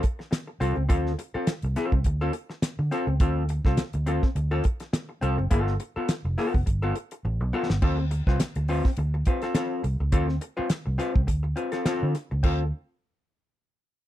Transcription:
0.03 muted hollow-body jazz guitar stroke, kick, closed hi-hat
0.19 muted hollow-body jazz guitar stroke, snare
0.31 muted hollow-body jazz guitar stroke, snare, closed hi-hat
0.47 muted hollow-body jazz guitar stroke
0.60 fingered electric bass C2, hollow-body jazz guitar C4 F4 A4, closed hi-hat
0.76 fingered electric bass C#2, muted hollow-body jazz guitar stroke
0.89 fingered electric bass D2, hollow-body jazz guitar C4 F4 A4, kick, closed hi-hat
1.06 snare
1.19 muted hollow-body jazz guitar stroke, closed hi-hat
1.34 hollow-body jazz guitar C4 F4 A4, muted fingered electric bass stroke
1.47 snare, closed hi-hat
1.62 fingered electric bass C2, muted hollow-body jazz guitar stroke, closed hi-hat
1.76 hollow-body jazz guitar C4 F4 A4, snare, closed hi-hat
1.92 fingered electric bass C2, muted hollow-body jazz guitar stroke, kick
2.04 fingered electric bass D2, muted hollow-body jazz guitar stroke, kick, closed hi-hat
2.21 hollow-body jazz guitar C4 F4 A4
2.33 muted hollow-body jazz guitar stroke, closed hi-hat
2.50 muted hollow-body jazz guitar stroke, snare
2.62 muted hollow-body jazz guitar stroke, snare, closed hi-hat
2.79 fingered electric bass D3, muted hollow-body jazz guitar stroke
2.91 hollow-body jazz guitar C4 F4 A4, snare, closed hi-hat
3.07 fingered electric bass C#2, muted hollow-body jazz guitar stroke
3.20 fingered electric bass D2, hollow-body jazz guitar C4 F4 A4, kick, closed hi-hat
3.49 muted hollow-body jazz guitar stroke, closed hi-hat
3.65 fingered electric bass C2, hollow-body jazz guitar C4 F4 A4, kick, snare
3.77 muted fingered electric bass stroke, snare, closed hi-hat
3.93 fingered electric bass D2, muted hollow-body jazz guitar stroke, closed hi-hat
4.06 hollow-body jazz guitar C4 F4 A4, closed hi-hat
4.22 muted hollow-body jazz guitar stroke, kick, snare
4.35 fingered electric bass D2, muted hollow-body jazz guitar stroke, closed hi-hat
4.51 hollow-body jazz guitar C4 F4 A4
4.64 muted hollow-body jazz guitar stroke, kick, closed hi-hat
4.80 muted hollow-body jazz guitar stroke, snare, closed hi-hat
4.93 muted hollow-body jazz guitar stroke, snare, closed hi-hat
5.09 muted hollow-body jazz guitar stroke
5.21 fingered electric bass C2, hollow-body jazz guitar C4 F4 A4, closed hi-hat
5.38 fingered electric bass F#1, muted hollow-body jazz guitar stroke
5.51 fingered electric bass G1, hollow-body jazz guitar B3 F4 A4, kick, closed hi-hat
5.67 snare
5.80 muted hollow-body jazz guitar stroke, closed hi-hat
5.96 hollow-body jazz guitar B3 F4 A4, muted fingered electric bass stroke
6.09 snare, closed hi-hat
6.25 fingered electric bass F1, muted hollow-body jazz guitar stroke
6.38 hollow-body jazz guitar B3 F4 A4, snare, open hi-hat
6.54 fingered electric bass F1, muted hollow-body jazz guitar stroke, kick
6.66 fingered electric bass G1, muted hollow-body jazz guitar stroke, kick, closed hi-hat
6.82 hollow-body jazz guitar B3 F4 A4
6.96 muted hollow-body jazz guitar stroke, closed hi-hat
7.11 muted hollow-body jazz guitar stroke, closed hi-hat
7.25 fingered electric bass A1, muted hollow-body jazz guitar stroke
7.40 fingered electric bass B1, muted hollow-body jazz guitar stroke
7.53 hollow-body jazz guitar B3 F4 A4
7.69 fingered electric bass G1, muted hollow-body jazz guitar stroke, snare
7.82 fingered electric bass D2, hollow-body jazz guitar C4 F4 A4, kick, crash
7.98 muted hollow-body jazz guitar stroke
8.11 muted hollow-body jazz guitar stroke, closed hi-hat
8.27 fingered electric bass C2, hollow-body jazz guitar C4 F4 B4, kick, snare
8.40 muted hollow-body jazz guitar stroke, snare, closed hi-hat
8.55 fingered electric bass D2, muted hollow-body jazz guitar stroke, closed hi-hat
8.68 hollow-body jazz guitar C4 F4 B4, open hi-hat
8.84 muted hollow-body jazz guitar stroke, kick, snare
8.97 fingered electric bass D2, muted hollow-body jazz guitar stroke, closed hi-hat
9.14 muted hollow-body jazz guitar stroke
9.25 hollow-body jazz guitar C4 F4 B4, kick, closed hi-hat
9.42 hollow-body jazz guitar C4 F4 A4, snare, closed hi-hat
9.55 hollow-body jazz guitar C4 F4 A4, snare, closed hi-hat
9.84 fingered electric bass C2, muted hollow-body jazz guitar stroke, closed hi-hat
10.00 fingered electric bass C#2, muted hollow-body jazz guitar stroke
10.12 fingered electric bass D2, hollow-body jazz guitar C4 F4 A4, kick, closed hi-hat
10.28 muted hollow-body jazz guitar stroke, snare
10.41 muted hollow-body jazz guitar stroke, closed hi-hat
10.57 hollow-body jazz guitar C4 F4 B4, muted fingered electric bass stroke
10.70 muted hollow-body jazz guitar stroke, snare, closed hi-hat
10.86 fingered electric bass C2, muted hollow-body jazz guitar stroke
10.98 hollow-body jazz guitar C4 F4 B4, snare, closed hi-hat
11.14 fingered electric bass C2, muted hollow-body jazz guitar stroke, kick
11.27 fingered electric bass D2, muted hollow-body jazz guitar stroke, kick, closed hi-hat
11.43 muted hollow-body jazz guitar stroke
11.56 hollow-body jazz guitar C4 F4 B4, closed hi-hat
11.72 hollow-body jazz guitar C4 F4 A4, snare, closed hi-hat
11.86 hollow-body jazz guitar C4 F4 A4, snare, closed hi-hat
12.03 fingered electric bass D3
12.14 muted hollow-body jazz guitar stroke, snare, closed hi-hat
12.31 fingered electric bass C#2, muted hollow-body jazz guitar stroke
12.43 fingered electric bass D2, hollow-body jazz guitar C4 F4 A4, kick, crash

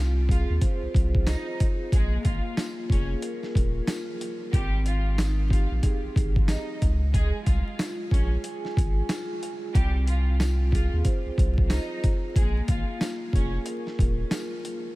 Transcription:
Already playing: sub bass C2, vibraphone C4 F4
0.29 violin section F4 F5, vibraphone G#4, kick, closed hi-hat
0.50 sub bass D#2
0.61 vibraphone C5, kick, closed hi-hat
0.83 sub bass C2
0.94 sub bass C2, kick, closed hi-hat
1.15 kick
1.26 violin section D#4 D#5, vibraphone F4, snare, closed hi-hat, tambourine
1.60 kick, closed hi-hat
1.92 sub bass A#1, violin section G#3 G#4, vibraphone A#3, kick, closed hi-hat
2.25 sub bass G#1, violin section F4 F5, kick, closed hi-hat
2.56 vibraphone F4, snare, closed hi-hat, tambourine
2.90 sub bass F1, violin section C#4 C#5, vibraphone G#4, kick, closed hi-hat
3.22 vibraphone A#4, closed hi-hat
3.43 snare
3.55 sub bass D#1, kick, closed hi-hat
3.88 vibraphone F4, snare, closed hi-hat, tambourine
4.21 closed hi-hat
4.53 sub bass G#1, violin section G3 G4, vibraphone C4, kick, closed hi-hat
4.86 violin section F4 F5, closed hi-hat
5.18 vibraphone D#4, snare, closed hi-hat, tambourine
5.50 violin section F4 F5, vibraphone G4, kick, closed hi-hat
5.71 sub bass A#1
5.83 vibraphone G#4, kick, closed hi-hat
6.04 sub bass G#1
6.16 sub bass G#1, kick, closed hi-hat
6.36 kick
6.48 vibraphone D#4, violin section D#4 D#5, snare, closed hi-hat, tambourine
6.82 sub bass C#2, kick, closed hi-hat
7.13 vibraphone G#3, violin section G#3 G#4, kick, closed hi-hat
7.46 sub bass C2, violin section F4 F5, kick, closed hi-hat
7.79 vibraphone F4, snare, closed hi-hat, tambourine
8.11 sub bass A#1, violin section C#4 C#5, vibraphone G#4, kick, closed hi-hat
8.44 vibraphone G#5, closed hi-hat
8.65 snare
8.77 sub bass G#1, kick, closed hi-hat
9.09 vibraphone F4, snare, closed hi-hat, tambourine
9.43 closed hi-hat
9.74 sub bass C2, violin section G3 G4, vibraphone C4, kick, closed hi-hat
10.07 violin section F4 F5, closed hi-hat
10.40 vibraphone F4, snare, closed hi-hat, tambourine
10.72 violin section F4 F5, vibraphone G#4, kick, closed hi-hat
10.93 sub bass D#2
11.05 vibraphone C5, kick, closed hi-hat
11.26 sub bass C2
11.38 sub bass C2, kick, closed hi-hat
11.58 kick
11.70 violin section D#4 D#5, vibraphone F4, snare, closed hi-hat, tambourine
12.04 kick, closed hi-hat
12.36 sub bass A#1, violin section G#3 G#4, vibraphone A#3, kick, closed hi-hat
12.68 sub bass G#1, violin section F4 F5, kick, closed hi-hat
12.99 vibraphone F4, snare, closed hi-hat, tambourine
13.33 sub bass F1, violin section C#4 C#5, vibraphone G#4, kick, closed hi-hat
13.64 vibraphone A#4, closed hi-hat
13.87 snare
13.99 sub bass D#1, kick, closed hi-hat
14.31 vibraphone F4, snare, closed hi-hat, tambourine
14.65 closed hi-hat

